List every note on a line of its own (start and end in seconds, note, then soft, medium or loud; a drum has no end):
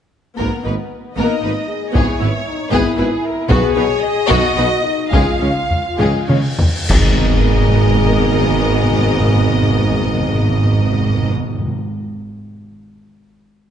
0.38 0.49 G#1 soft
0.38 0.47 G#1 soft
0.38 0.47 G#2 soft
0.38 0.62 A#3 soft
0.38 0.63 B3 soft
0.38 1.14 B3 medium
0.38 0.63 A#4 soft
0.38 taiko soft
0.63 0.73 G#1 soft
0.63 0.76 G#1 soft
0.63 0.73 G#2 soft
0.63 0.71 A#3 soft
0.63 0.72 D#4 soft
0.63 0.74 B4 soft
1.15 1.28 G#1 soft
1.15 1.26 G#1 soft
1.15 1.24 G#2 soft
1.15 1.41 A#3 soft
1.15 1.41 B3 soft
1.15 1.67 D#4 medium
1.15 1.42 A#4 medium
1.15 1.90 D#5 soft
1.42 1.51 G#1 soft
1.42 1.54 G#1 soft
1.42 1.51 G#2 soft
1.42 1.50 A#3 soft
1.42 1.50 D#4 soft
1.42 1.52 B4 soft
1.68 1.95 G#4 medium
1.92 2.03 G#1 medium
1.92 2.05 G#1 soft
1.92 2.03 G#2 medium
1.92 2.69 G#2 medium
1.92 2.18 B3 medium
1.92 2.47 E4 medium
1.92 2.19 G#4 soft
1.92 2.72 C#5 medium
1.92 taiko medium
2.20 2.31 G#1 soft
2.20 2.30 G#1 soft
2.20 2.28 G#2 soft
2.20 2.28 B3 soft
2.20 2.28 E4 soft
2.20 2.29 B4 soft
2.47 2.73 D#4 medium
2.71 2.83 G#1 medium
2.71 2.81 G#1 medium
2.71 2.79 G#2 medium
2.71 2.96 B3 medium
2.71 3.49 E4 medium
2.71 2.96 G#4 medium
2.71 2.98 B4 medium
2.71 taiko medium
2.97 3.08 G#1 medium
2.97 3.08 G#1 soft
2.97 3.05 G#2 soft
2.97 3.05 B3 medium
2.97 3.06 E4 soft
2.97 3.23 G#4 soft
2.97 3.06 B4 medium
3.25 3.51 A#4 medium
3.49 3.60 B1 medium
3.49 3.59 B1 medium
3.49 3.57 B2 medium
3.49 3.74 B3 medium
3.49 3.74 F#4 medium
3.49 4.28 G#4 loud
3.49 3.75 B4 medium
3.49 taiko medium
3.75 3.86 B1 medium
3.75 3.85 B1 medium
3.75 3.84 B2 medium
3.75 3.85 B3 medium
3.75 3.85 D#4 medium
3.75 3.83 B4 medium
3.75 4.02 C#5 medium
4.01 5.12 D#5 loud
4.27 4.41 B1 medium
4.27 4.38 B1 medium
4.27 4.37 B2 medium
4.27 4.55 B3 medium
4.27 4.54 F#4 medium
4.27 4.84 F#4 medium
4.27 taiko medium
4.56 4.65 B1 medium
4.56 4.68 B1 medium
4.56 4.64 B2 medium
4.56 4.65 B3 soft
4.56 4.65 D#4 soft
4.56 4.65 B4 medium
4.84 5.12 D#4 medium
5.12 5.20 C#2 medium
5.12 5.24 C#2 medium
5.12 5.20 C#3 medium
5.12 5.39 G#3 medium
5.12 6.59 F4 medium
5.12 5.39 G#4 medium
5.12 6.41 F5 medium
5.12 taiko medium
5.12 cymbal swell soft
5.40 5.49 C#2 soft
5.40 5.53 C#2 soft
5.40 5.49 C#3 soft
5.40 5.49 G#3 soft
5.40 5.48 C#4 soft
5.40 5.48 C#5 soft
5.71 taiko low soft
5.98 6.11 C#2 medium
5.98 6.07 C#2 medium
5.98 6.07 C#3 medium
5.98 6.26 G#3 medium
5.98 6.26 G#4 medium
5.98 taiko low-mid medium
6.28 6.41 C#2 soft
6.28 6.37 C#2 soft
6.28 6.37 C#3 soft
6.28 6.36 G#3 soft
6.28 6.36 C#4 soft
6.28 6.37 C#5 soft
6.28 taiko mid medium
6.59 taiko low loud
6.89 11.31 G#1 medium
6.89 11.32 G#1 medium
6.89 6.96 G#2 medium
6.89 11.31 G#2 medium
6.89 11.31 B3 medium
6.89 11.31 G#4 medium
6.89 11.32 A#4 medium
6.89 11.31 D#5 medium
6.89 concert bass drum medium
6.89 taiko loud
6.89 crash medium
6.89 impact medium
6.96 7.03 G#2 medium
7.03 7.10 G#2 medium
7.10 7.17 G#2 medium
7.18 7.25 G#2 medium
7.25 7.32 G#2 medium
7.33 7.40 G#2 medium
7.40 7.47 G#2 medium
7.47 7.54 G#2 medium
7.54 7.61 G#2 medium
7.61 7.68 G#2 medium
7.68 7.76 G#2 medium
7.76 7.83 G#2 medium
7.83 7.90 G#2 medium
7.90 7.96 G#2 medium
7.96 8.04 G#2 medium
8.04 8.11 G#2 medium
8.11 8.18 G#2 medium
8.19 8.26 G#2 medium
8.26 8.32 G#2 medium
8.32 8.40 G#2 medium
8.40 8.47 G#2 medium
8.48 8.55 G#2 medium
8.55 8.62 G#2 medium
8.62 8.69 G#2 medium
8.69 8.77 G#2 medium
8.77 8.84 G#2 medium
8.84 8.91 G#2 medium
8.91 8.98 G#2 medium
8.98 9.05 G#2 medium
9.06 9.13 G#2 medium
9.13 9.20 G#2 medium
9.20 9.28 G#2 medium
9.28 9.34 G#2 medium
9.34 9.42 G#2 medium
9.42 9.49 G#2 medium
9.49 9.56 G#2 medium
9.56 9.63 G#2 medium
9.63 9.70 G#2 medium
9.70 9.77 G#2 medium
9.77 9.84 G#2 medium
9.85 9.92 G#2 medium
9.92 9.99 G#2 medium
9.99 10.06 G#2 medium
10.06 10.13 G#2 medium
10.13 10.21 G#2 medium
10.21 10.28 G#2 medium
10.28 10.35 G#2 medium
10.35 10.42 G#2 medium
10.42 10.49 G#2 medium
10.49 10.57 G#2 medium
10.57 10.64 G#2 medium
10.64 10.72 G#2 medium
10.72 10.79 G#2 medium
10.79 10.86 G#2 medium
10.86 10.93 G#2 medium
10.93 11.01 G#2 medium
11.01 11.09 G#2 medium
11.09 11.16 G#2 medium
11.16 11.23 G#2 medium
11.23 11.30 G#2 medium
11.30 11.37 G#2 medium
11.37 11.44 G#2 medium
11.45 11.52 G#2 medium
11.53 11.59 G#2 medium
11.59 11.66 G#2 medium
11.66 11.73 G#2 medium